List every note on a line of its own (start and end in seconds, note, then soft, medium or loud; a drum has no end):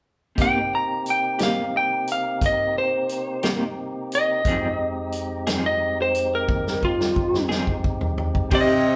0.36 0.57 C3 medium
0.36 4.42 C3 soft
0.36 0.58 A#3 soft
0.36 0.58 D#4 medium
0.36 0.58 G4 medium
0.36 kick medium
0.36 closed hi-hat medium
0.40 4.42 A#3 soft
0.40 4.42 C4 soft
0.40 4.42 D#4 soft
0.40 4.42 G4 soft
0.40 0.72 G5 medium
0.75 1.06 A#5 medium
1.06 closed hi-hat soft
1.10 1.41 G5 medium
1.39 1.60 C3 soft
1.39 1.60 A#3 soft
1.39 1.60 D#4 soft
1.39 1.59 G4 soft
1.39 snare medium
1.39 closed hi-hat medium
1.43 1.74 F5 medium
1.77 2.08 G5 medium
2.07 closed hi-hat soft
2.12 2.43 F5 medium
2.41 kick medium
2.41 closed hi-hat medium
2.46 2.76 D#5 medium
2.78 3.43 C5 medium
3.09 closed hi-hat soft
3.43 3.64 C3 soft
3.43 3.64 A#3 soft
3.43 3.64 D#4 medium
3.43 3.64 G4 soft
3.43 snare medium
3.43 closed hi-hat medium
4.12 5.62 D#5 medium
4.12 closed hi-hat soft
4.45 8.50 F2 soft
4.45 4.66 F3 medium
4.45 8.50 G#3 soft
4.45 4.67 C4 medium
4.45 8.50 C4 medium
4.45 8.49 D#4 soft
4.45 4.67 D#4 medium
4.45 8.50 G4 medium
4.45 4.67 G#4 medium
4.45 kick medium
4.45 closed hi-hat medium
5.12 closed hi-hat soft
5.47 5.68 F3 soft
5.47 5.68 C4 soft
5.47 5.67 D#4 soft
5.47 5.67 G#4 soft
5.47 snare medium
5.47 closed hi-hat medium
5.66 5.98 D#5 soft
6.02 6.33 C5 medium
6.15 closed hi-hat soft
6.35 6.83 A#4 medium
6.48 kick medium
6.48 high tom soft
6.67 snare soft
6.83 7.49 F4 medium
6.83 kick soft
7.01 snare soft
7.16 kick medium
7.34 snare soft
7.49 7.71 F3 soft
7.49 7.71 C4 soft
7.49 7.71 D#4 soft
7.49 7.70 G#4 medium
7.49 snare medium
7.67 kick medium
7.84 kick medium
8.01 floor tom medium
8.18 floor tom medium
8.35 kick medium
8.51 8.72 C3 medium
8.51 8.96 C3 medium
8.51 8.96 G3 medium
8.51 8.72 C4 medium
8.51 8.96 C4 medium
8.51 8.73 D#4 medium
8.51 8.96 G4 medium
8.51 8.73 G4 medium
8.51 8.96 D#5 medium
8.51 kick medium
8.51 crash medium